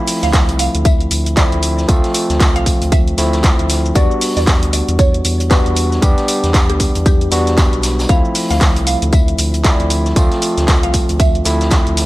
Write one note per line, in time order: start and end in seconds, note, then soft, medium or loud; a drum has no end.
0.00 1.34 F3 medium
0.00 1.34 A3 medium
0.00 1.35 C4 medium
0.00 1.35 E4 loud
0.08 open hi-hat loud
0.08 open hi-hat medium
0.08 shaker medium
0.23 0.50 D2 medium
0.23 0.50 F5 loud
0.23 snare soft
0.23 closed hi-hat soft
0.23 shaker soft
0.33 kick loud
0.33 snare loud
0.33 clap loud
0.33 closed hi-hat medium
0.33 tambourine medium
0.33 shaker soft
0.49 0.69 C2 loud
0.49 closed hi-hat soft
0.49 closed hi-hat medium
0.49 shaker soft
0.59 0.79 F5 medium
0.59 open hi-hat loud
0.59 tambourine medium
0.59 shaker medium
0.75 1.08 D2 medium
0.75 closed hi-hat medium
0.75 shaker soft
0.85 1.05 E5 medium
0.85 kick loud
0.85 closed hi-hat medium
0.85 tambourine medium
0.85 shaker soft
1.01 closed hi-hat soft
1.01 shaker soft
1.11 1.48 D2 medium
1.11 open hi-hat loud
1.11 tambourine medium
1.11 shaker medium
1.26 closed hi-hat soft
1.26 shaker soft
1.37 1.86 F3 medium
1.37 1.86 A3 medium
1.37 1.86 C4 medium
1.37 1.86 E4 medium
1.37 1.65 D5 loud
1.37 kick loud
1.37 snare loud
1.37 clap loud
1.37 closed hi-hat medium
1.37 tambourine medium
1.37 shaker soft
1.52 1.86 D2 medium
1.52 closed hi-hat soft
1.52 shaker soft
1.62 open hi-hat loud
1.62 tambourine medium
1.62 shaker medium
1.78 snare soft
1.78 shaker soft
1.88 2.01 D2 loud
1.88 3.15 F3 loud
1.88 3.15 A3 medium
1.88 3.15 C4 medium
1.88 3.16 F4 loud
1.88 kick loud
1.88 closed hi-hat medium
1.88 tambourine medium
1.88 shaker soft
2.04 snare soft
2.04 closed hi-hat soft
2.04 shaker soft
2.14 open hi-hat loud
2.14 tambourine medium
2.14 shaker medium
2.30 2.57 D2 medium
2.30 snare medium
2.30 closed hi-hat soft
2.30 shaker soft
2.40 kick loud
2.40 snare loud
2.40 clap loud
2.40 closed hi-hat medium
2.40 tambourine medium
2.40 shaker soft
2.56 2.76 C2 loud
2.56 2.83 F5 medium
2.56 closed hi-hat medium
2.56 shaker soft
2.66 kick medium
2.66 open hi-hat loud
2.66 tambourine medium
2.66 shaker medium
2.82 3.15 D2 loud
2.82 closed hi-hat medium
2.82 closed hi-hat soft
2.82 shaker soft
2.92 3.31 E5 medium
2.92 kick loud
2.92 closed hi-hat medium
2.92 tambourine medium
2.92 shaker soft
3.08 closed hi-hat soft
3.08 shaker soft
3.17 3.55 D2 medium
3.17 3.93 F3 medium
3.17 3.93 A3 medium
3.17 3.93 C4 medium
3.17 3.93 E4 loud
3.17 snare medium
3.17 open hi-hat loud
3.17 tambourine medium
3.17 shaker medium
3.33 snare medium
3.33 closed hi-hat soft
3.33 shaker soft
3.43 kick loud
3.43 snare loud
3.43 clap loud
3.43 closed hi-hat medium
3.43 tambourine loud
3.43 shaker soft
3.59 3.92 D2 medium
3.59 closed hi-hat soft
3.59 shaker soft
3.69 snare medium
3.69 open hi-hat loud
3.69 tambourine medium
3.69 shaker medium
3.85 shaker soft
3.95 4.08 E2 medium
3.95 5.48 G3 medium
3.95 5.48 B3 medium
3.95 5.48 D4 medium
3.95 5.48 F#4 loud
3.95 4.23 D5 loud
3.95 kick loud
3.95 closed hi-hat medium
3.95 tambourine medium
3.95 shaker soft
4.11 shaker soft
4.21 open hi-hat loud
4.21 open hi-hat medium
4.21 shaker medium
4.37 4.64 E2 loud
4.37 4.64 D5 loud
4.37 snare soft
4.37 closed hi-hat soft
4.37 shaker soft
4.47 kick loud
4.47 snare loud
4.47 clap loud
4.47 closed hi-hat medium
4.47 tambourine medium
4.47 shaker soft
4.62 4.83 D2 loud
4.62 closed hi-hat soft
4.62 closed hi-hat medium
4.62 shaker soft
4.73 4.93 D5 medium
4.73 open hi-hat loud
4.73 tambourine medium
4.73 shaker medium
4.88 5.22 E2 loud
4.88 closed hi-hat medium
4.88 shaker soft
4.99 5.19 C#5 medium
4.99 kick loud
4.99 closed hi-hat medium
4.99 tambourine medium
4.99 shaker soft
5.14 closed hi-hat soft
5.14 shaker soft
5.24 5.62 E2 medium
5.24 open hi-hat loud
5.24 tambourine medium
5.24 shaker medium
5.40 closed hi-hat soft
5.40 shaker soft
5.50 6.00 G3 medium
5.50 6.00 B3 medium
5.50 6.00 D4 medium
5.50 6.00 F#4 medium
5.50 5.78 B4 medium
5.50 kick loud
5.50 snare loud
5.50 clap loud
5.50 closed hi-hat medium
5.50 tambourine loud
5.50 shaker soft
5.66 5.99 E2 medium
5.66 closed hi-hat soft
5.66 shaker soft
5.76 open hi-hat loud
5.76 tambourine medium
5.76 shaker medium
5.92 snare soft
5.92 shaker soft
6.02 6.15 E2 loud
6.02 7.29 G3 loud
6.02 7.29 B3 medium
6.02 7.29 D4 medium
6.02 7.29 G4 loud
6.02 kick loud
6.02 closed hi-hat medium
6.02 tambourine medium
6.02 shaker soft
6.18 snare soft
6.18 closed hi-hat soft
6.18 shaker soft
6.28 open hi-hat loud
6.28 tambourine medium
6.28 shaker medium
6.44 6.71 E2 loud
6.44 snare medium
6.44 closed hi-hat soft
6.44 shaker soft
6.54 kick loud
6.54 snare loud
6.54 clap loud
6.54 closed hi-hat medium
6.54 tambourine loud
6.54 shaker soft
6.70 6.90 D2 loud
6.70 6.97 G4 medium
6.70 closed hi-hat medium
6.70 shaker soft
6.80 kick medium
6.80 open hi-hat loud
6.80 tambourine medium
6.80 shaker medium
6.95 7.29 E2 loud
6.95 closed hi-hat soft
6.95 closed hi-hat medium
6.95 shaker soft
7.06 7.44 G4 medium
7.06 kick loud
7.06 closed hi-hat medium
7.06 tambourine medium
7.06 shaker soft
7.21 closed hi-hat soft
7.21 shaker soft
7.31 7.69 E2 medium
7.31 8.07 G3 medium
7.31 8.07 B3 medium
7.31 8.07 D4 medium
7.31 8.07 F#4 loud
7.31 snare soft
7.31 open hi-hat loud
7.31 tambourine medium
7.31 shaker medium
7.47 snare medium
7.47 closed hi-hat soft
7.47 shaker soft
7.57 kick loud
7.57 snare loud
7.57 clap loud
7.57 closed hi-hat medium
7.57 tambourine medium
7.57 shaker soft
7.73 8.06 B1 medium
7.73 closed hi-hat soft
7.73 shaker soft
7.83 snare loud
7.83 open hi-hat loud
7.83 tambourine medium
7.83 shaker medium
7.99 snare loud
7.99 tambourine medium
7.99 shaker soft
8.09 8.22 D2 loud
8.09 9.62 F3 medium
8.09 9.62 A3 medium
8.09 9.62 C4 medium
8.09 9.62 E4 loud
8.09 8.37 F5 loud
8.09 kick loud
8.09 closed hi-hat medium
8.09 tambourine medium
8.09 shaker soft
8.25 shaker soft
8.35 open hi-hat loud
8.35 open hi-hat medium
8.35 shaker medium
8.50 8.78 D2 loud
8.50 8.78 F5 loud
8.50 snare medium
8.50 closed hi-hat soft
8.50 shaker soft
8.61 kick loud
8.61 snare loud
8.61 clap loud
8.61 closed hi-hat medium
8.61 tambourine medium
8.61 shaker soft
8.76 8.97 C2 loud
8.76 closed hi-hat medium
8.76 closed hi-hat soft
8.76 shaker soft
8.87 9.07 F5 medium
8.87 open hi-hat loud
8.87 tambourine medium
8.87 shaker medium
9.02 9.36 D2 loud
9.02 closed hi-hat soft
9.02 shaker soft
9.13 9.33 E5 medium
9.13 kick loud
9.13 closed hi-hat medium
9.13 tambourine medium
9.13 shaker soft
9.28 closed hi-hat soft
9.28 shaker soft
9.39 9.75 D2 medium
9.39 open hi-hat loud
9.39 tambourine medium
9.39 shaker medium
9.54 closed hi-hat soft
9.54 shaker soft
9.64 10.14 F3 medium
9.64 10.14 A3 medium
9.64 10.14 C4 medium
9.64 10.14 E4 medium
9.64 9.92 D5 loud
9.64 kick loud
9.64 snare loud
9.64 clap loud
9.64 closed hi-hat medium
9.64 tambourine medium
9.64 shaker soft
9.80 10.13 D2 medium
9.80 closed hi-hat soft
9.80 shaker soft
9.90 open hi-hat loud
9.90 tambourine medium
9.90 shaker medium
10.06 snare soft
10.06 shaker soft
10.16 10.29 D2 loud
10.16 11.43 F3 loud
10.16 11.43 A3 medium
10.16 11.43 C4 medium
10.16 11.43 F4 loud
10.16 kick loud
10.16 closed hi-hat medium
10.16 tambourine medium
10.16 shaker soft
10.32 snare soft
10.32 closed hi-hat soft
10.32 shaker soft
10.42 open hi-hat loud
10.42 tambourine medium
10.42 shaker medium
10.58 10.85 D2 loud
10.58 snare medium
10.58 closed hi-hat soft
10.58 shaker soft
10.68 kick loud
10.68 snare loud
10.68 clap loud
10.68 closed hi-hat medium
10.68 tambourine medium
10.68 shaker soft
10.83 11.04 C2 loud
10.83 11.11 F5 loud
10.83 closed hi-hat medium
10.83 shaker soft
10.94 kick medium
10.94 open hi-hat loud
10.94 tambourine medium
10.94 shaker medium
11.09 11.43 D2 loud
11.09 closed hi-hat soft
11.09 closed hi-hat medium
11.09 shaker soft
11.20 11.58 E5 medium
11.20 kick loud
11.20 closed hi-hat medium
11.20 tambourine medium
11.20 shaker soft
11.35 closed hi-hat soft
11.35 shaker soft
11.45 11.82 D2 medium
11.45 12.06 F3 medium
11.45 12.06 A3 medium
11.45 12.06 C4 medium
11.45 12.06 E4 loud
11.45 snare soft
11.45 open hi-hat loud
11.45 tambourine medium
11.45 shaker medium
11.61 snare medium
11.61 closed hi-hat soft
11.61 shaker soft
11.71 kick loud
11.71 snare loud
11.71 clap loud
11.71 closed hi-hat medium
11.71 tambourine medium
11.71 shaker soft
11.87 12.06 D2 medium
11.87 closed hi-hat soft
11.87 shaker soft
11.97 snare medium
11.97 open hi-hat loud
11.97 tambourine medium
11.97 shaker medium